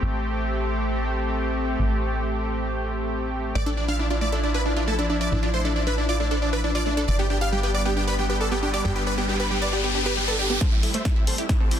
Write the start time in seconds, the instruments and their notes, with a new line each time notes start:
Already playing: analog synth pad A3 C4 G4
0.02 analog synth bass A1
1.79 analog synth bass A1
3.55 analog synth bass A1, analog synth pad F3 D4 E4, synth pluck A3 D5, supersaw synth D5
3.66 supersaw synth D4, synth pluck D4 A4
3.77 supersaw synth D4, synth pluck D4 D5
3.88 synth pluck D4 F5, supersaw synth F5
3.99 supersaw synth D4, synth pluck D4 E4
4.10 supersaw synth D4, synth pluck D4 F4
4.21 synth pluck A3 D5, supersaw synth D5
4.32 supersaw synth D4, synth pluck D4 A4
4.43 supersaw synth D4, synth pluck D4 D5
4.54 synth pluck D4 B4, supersaw synth B4
4.65 supersaw synth D4, synth pluck D4 E4
4.76 supersaw synth D4, synth pluck D4 F4
4.88 synth pluck A3 A4, supersaw synth A4
4.99 supersaw synth D4, synth pluck D4 A4
5.10 supersaw synth D4, synth pluck D4 D5
5.21 synth pluck D4 D5, supersaw synth D5
5.32 analog synth bass A1, supersaw synth D4, synth pluck D4 E4
5.43 supersaw synth D4, synth pluck D4 F4
5.54 synth pluck A3 C5, supersaw synth C5
5.65 supersaw synth D4, synth pluck D4 A4
5.76 supersaw synth D4, synth pluck D4 D5
5.87 synth pluck D4 B4, supersaw synth B4
5.98 supersaw synth D4, synth pluck D4 E4
6.09 synth pluck F4 D5, supersaw synth D5
6.20 synth pluck A3 D4, supersaw synth D4
6.31 synth pluck D4 A4, supersaw synth D4
6.42 supersaw synth D4, synth pluck D4 D5
6.53 synth pluck D4 B4, supersaw synth B4
6.64 supersaw synth D4, synth pluck D4 E4
6.75 synth pluck F4 D5, supersaw synth D5
6.86 synth pluck A3 D4, supersaw synth D4
6.97 supersaw synth D4, synth pluck D4 A4
7.08 analog synth bass G1, analog synth pad G3 B3, supersaw synth D5, synth pluck D5, riser
7.19 synth pluck B3 G4, supersaw synth G4
7.30 synth pluck D4 G4, supersaw synth G4
7.41 synth pluck G4 F5, supersaw synth F5
7.52 synth pluck G3 G4, supersaw synth G4
7.63 supersaw synth G4, synth pluck G4 B4
7.74 synth pluck D5, supersaw synth D5
7.85 synth pluck B3 G4, supersaw synth G4
7.96 synth pluck D4 G4, supersaw synth G4
8.07 synth pluck G4 B4, supersaw synth B4
8.18 synth pluck G3 G4, supersaw synth G4
8.29 synth pluck G4 B4, supersaw synth G4
8.40 synth pluck A4 D5, supersaw synth A4
8.51 synth pluck B3 G4, supersaw synth G4
8.62 synth pluck D4 G4, supersaw synth G4
8.73 synth pluck G4 D5, supersaw synth D5
8.84 analog synth bass G1, synth pluck G3 G4, supersaw synth G4
8.95 synth pluck G4 B4, supersaw synth G4
9.06 synth pluck B4 D5, supersaw synth B4
9.17 synth pluck B3 G4, supersaw synth G4
9.28 synth pluck D4 G4, supersaw synth G4
9.39 synth pluck G4 B4, supersaw synth B4
9.50 synth pluck G3 G4, supersaw synth G4
9.61 synth pluck B4 D5, supersaw synth D5
9.72 synth pluck G4 D5, supersaw synth G4
9.83 synth pluck B3 G4, supersaw synth G4
9.94 synth pluck D4 G4, supersaw synth G4
10.06 synth pluck G4 B4, supersaw synth B4
10.17 synth pluck G3 G4, supersaw synth G4
10.28 synth pluck A4 B4, supersaw synth A4
10.39 synth pluck G4 D5, supersaw synth G4
10.50 synth pluck B3 G4, supersaw synth G4
10.61 synth pluck G3, analog synth pad G3 A3 C4, supersaw synth A4 C5, kick, snare, closed hi-hat, riser
10.72 supersaw synth E4, synth pluck G4
10.83 analog synth bass A1, supersaw synth E4, synth pluck A4, open hi-hat
10.94 synth pluck A3, supersaw synth C5 E5, closed hi-hat
11.05 synth pluck C4, supersaw synth E4, kick, snare, closed hi-hat
11.16 synth pluck E4, supersaw synth E4
11.27 analog synth bass A1, synth pluck G3, supersaw synth A4 C5, open hi-hat
11.38 supersaw synth E4, synth pluck G4, closed hi-hat
11.49 synth pluck A4, kick, snare, closed hi-hat
11.60 synth pluck A3, supersaw synth C4 A4
11.71 analog synth bass A1, synth pluck C4, supersaw synth E4, open hi-hat